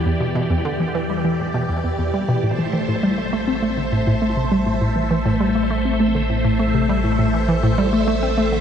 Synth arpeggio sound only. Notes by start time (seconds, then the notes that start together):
0.06 E2
0.20 B2
0.35 B2
0.50 E2
0.65 D3
0.80 E3
0.95 E3
1.10 G3
1.25 E3
1.40 A2
1.54 B2
1.69 E2
1.84 E2
1.99 E2
2.14 G3
2.29 B2
2.43 A2
2.59 E3
2.73 E3
2.88 A2
3.03 G3
3.18 A3
3.33 A3
3.48 C4
3.62 A3
3.77 D3
3.92 A2
4.07 A2
4.22 A3
4.37 C3
4.52 G3
4.66 A2
4.81 A2
4.96 E3
5.11 E3
5.26 A2
5.40 G3
5.55 A3
5.70 A3
5.85 C4
6.00 A3
6.15 D3
6.30 A2
6.45 A2
6.59 A3
6.74 C3
6.89 G3
7.04 A2
7.19 A2
7.34 E3
7.49 E3
7.63 A2
7.78 G3
7.93 A3
8.08 A3
8.23 C4
8.38 A3
8.52 D3